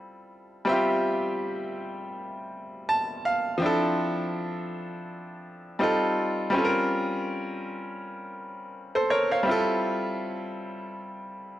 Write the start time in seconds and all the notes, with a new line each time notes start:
Already playing: G3 C4 E4 F4 A4
0.65 G3 C4
0.69 F4 E5
0.73 G4
2.89 A5
3.25 F5
3.58 F3 C4
3.62 D4 E4 A4
5.79 G3 C4 D#4 F4
5.83 A4
6.50 G3 C4
6.54 C#4 F4 A4
6.65 A#4
8.95 A4 C5
9.10 A#4 C#5
9.31 C#5 F5
9.43 G3 C4
9.47 E4 F4
9.51 A4